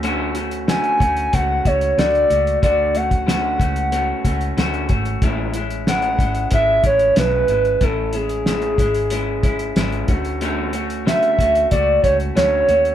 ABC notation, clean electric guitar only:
X:1
M:4/4
L:1/8
Q:1/4=92
K:Dlyd
V:1 name="Clean electric guitar"
[D,A,CF] [A,CF] [D,A,CF] [A,CF] [A,CF] [A,CF] [D,A,F] [A,F] | [D,A,F] [A,CF] [D,A,CF] [A,CF] [A,CF] [A,CF] [D,A,CF] [A,CF] | [A,,G,CE] [G,CE] [A,,G,CE] [G,CE] [G,CE] [G,CE] [A,,G,CE] [G,CE] | [A,,CE] [G,CE] [A,,G,CE] [G,CE] [G,CE] [G,CE] [G,CE] [A,CF] |
[D,A,CF] [A,CF] [D,A,CF] [A,CF] [A,F] [A,CF] [D,A,CF] [A,CF] |]